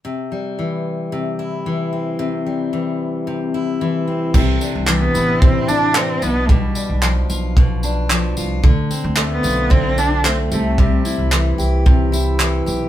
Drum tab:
CC |--------|--------|x-------|--------|
TB |--------|--------|-x-x-x-x|-x-x-x-x|
CP |--------|--------|--x---x-|--x---x-|
BD |--------|--------|o---o---|o---o---|

CC |--------|--------|
TB |-x-x-x-x|-x-x-x-x|
CP |--x---x-|--x---x-|
BD |o---o---|o---o---|